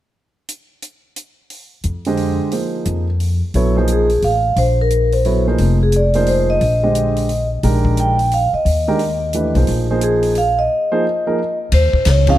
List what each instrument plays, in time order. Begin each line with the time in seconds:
0.48 closed hi-hat
0.82 closed hi-hat
1.16 closed hi-hat
1.50 open hi-hat
1.83 upright bass F2, closed hi-hat
2.05 grand piano D3 G#3 G4 C5 D#5, open hi-hat
2.17 open hi-hat
2.51 grand piano F3 A#3 D#4 G#4 C5, open hi-hat
2.85 upright bass F2, closed hi-hat
3.20 open hi-hat
3.54 upright bass A#1, grand piano F#3 B3 E4 A4 C#5, open hi-hat
3.76 grand piano F3 A#3 D#4 G#4 C5
3.87 closed hi-hat
3.92 vibraphone G#4
4.09 open hi-hat
4.22 upright bass A1, vibraphone F5, open hi-hat
4.56 upright bass A#1, vibraphone C5, open hi-hat
4.81 vibraphone A#4
4.90 closed hi-hat
5.12 vibraphone C5, open hi-hat
5.25 grand piano F#3 B3 E4 A4 C#5, open hi-hat
5.47 grand piano F3 A#3 D#4 G#4 C5
5.58 upright bass F1, open hi-hat
5.83 vibraphone G#4
5.92 closed hi-hat
5.96 vibraphone D5
6.13 grand piano F3 A#3 D#4 G#4 C5, open hi-hat
6.26 vibraphone C5, open hi-hat
6.50 vibraphone D#5
6.61 upright bass A#1, open hi-hat
6.83 grand piano D3 G#3 G4 C5 D#5
6.95 closed hi-hat
7.16 open hi-hat
7.29 open hi-hat
7.63 upright bass A#1, grand piano D#3 G#3 D4 G4 A#4, open hi-hat
7.85 kick
7.97 vibraphone G5, closed hi-hat
8.19 open hi-hat
8.31 vibraphone F5, open hi-hat
8.53 vibraphone D#5, muted upright bass stroke
8.65 upright bass D#2, open hi-hat
8.88 grand piano D#3 G#3 D4 G4 A#4
8.99 open hi-hat
9.33 grand piano E3 A3 D4 G4 B4, closed hi-hat
9.55 upright bass B1, grand piano F3 A#3 D#4 G#4 C5, open hi-hat
9.67 upright bass A#1, open hi-hat
9.90 grand piano F3 A#3 D#4 G#4 C5
10.01 vibraphone G#4, closed hi-hat
10.23 open hi-hat
10.35 vibraphone F5, open hi-hat
10.59 vibraphone D#5
10.92 grand piano F3 A#3 D#4 G#4 C5
11.27 grand piano F3 A#3 D#4 G#4 A#4
11.72 upright bass D#2, vibraphone C5, ride
11.93 muted upright bass stroke, kick
12.05 upright bass C#2, vibraphone C#5, snare, hi-hat pedal, ride
12.27 grand piano F3 C4 C#4 D#4 G#4, vibraphone F5, kick, ride